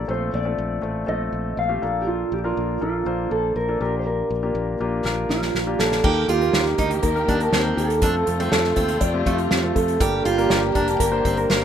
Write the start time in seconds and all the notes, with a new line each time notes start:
Already playing: A#2 A#3 D4 F4 G4 A4 C5 D5
0.08 A#1 A#2 A3 C4 F4 A4 C5
0.34 A#1 D5
0.45 A3 C4 F4 A4
0.58 A#1
0.82 A1 A3 C4 F4 A4
1.06 A#1 A3 C4 F4 A4 D#5
1.33 A#1
1.57 A#1 F5
1.69 A3 C4 F4 G4
1.82 A#1 A#2 A#3 D4 F4 A4
2.02 G4
2.07 F4
2.32 A#1 G4
2.44 A#3 D4 F4 A#4
2.57 A#1
2.81 A#1 A#3 D4 F4 A4
3.06 A#1 A#3 D4 F4 C5
3.31 A#1 A4
3.56 A#1 A#4
3.69 A#3 D4 F4 A4
3.81 A#1 A#2 A#3 D4 F4 G4 A#4
3.99 C5
4.07 A#4
4.30 A#1
4.43 A#3 D4 F4 G4
4.55 A#1
4.80 A#1 A#3 D4 F4 G4
5.05 A#1 A#3 D4 F4 A#4, snare
5.29 A#1 F4, snare
5.42 snare
5.55 A#1, snare
5.67 A#3 D4 F4 G4
5.79 A#1 A4, snare
5.92 snare
6.03 D#2 D#3 A#3 D#4 G4 A#4, kick, crash
6.28 D#2 F4 G4, closed hi-hat
6.41 A#3 D#4 G4 A#4, closed hi-hat
6.53 D#2, snare
6.66 snare
6.78 D2 A#3 D#4 G4 A#4, kick, closed hi-hat
6.91 closed hi-hat
7.03 D#2 A#4, kick, closed hi-hat
7.15 A#3 D#4 G4 A#4, closed hi-hat
7.28 D#2 D4, kick, closed hi-hat
7.40 A#4, closed hi-hat
7.52 D#2 C4, snare
7.64 A#3 D#4 G4 A#4
7.77 D#2 A4, closed hi-hat
7.90 closed hi-hat
8.02 F2 C3 A3 C4 D4 F4 A4, kick, closed hi-hat
8.27 F2, closed hi-hat
8.40 A3 C4 F4 A4, closed hi-hat
8.52 F2 A4, snare
8.64 snare
8.76 D#2 A3 C4 F4 C5, kick, closed hi-hat
8.88 closed hi-hat
9.01 F2 D5, kick, closed hi-hat
9.14 A3 C4 F4 G4
9.26 F2 A3 F4, kick, closed hi-hat
9.38 closed hi-hat
9.51 F2, snare
9.63 A3 C4 F4 A4
9.76 F2 A4, kick, closed hi-hat
9.88 closed hi-hat
10.00 G1 G2 D3 A#3 D4 G4 A#4, kick, closed hi-hat
10.25 G1 F4 G4, closed hi-hat
10.38 A#3 D4 G4 A#4, closed hi-hat
10.50 G1, snare
10.75 F1 A#3 D4 G4 A#4, kick, closed hi-hat
10.88 closed hi-hat
11.00 G1 A#4, kick, closed hi-hat
11.12 A#3 D4 G4 C5
11.25 G1 C4, kick, closed hi-hat
11.37 A#4, closed hi-hat
11.50 G1 A#3, snare